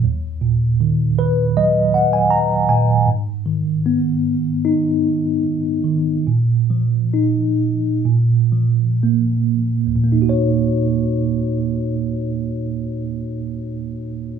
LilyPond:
<<
  \new Staff \with { instrumentName = "Tine electric piano" } { \time 4/4 \key ees \minor \tempo 4 = 71 r4. ces''8 ees''8 ges''16 aes''16 bes''8 aes''8 | r1 | r1 | r1 | }
  \new Staff \with { instrumentName = "Tine electric piano" } { \clef bass \time 4/4 \key ees \minor ees,8 bes,8 ees4 ges4. bes,8 | aes,8 ees8 ces'4 ees'4. ees8 | bes,8 f8 ees'4 bes,8 f8 bes4 | <ees, bes, bes ees' ges' des''>1 | }
>>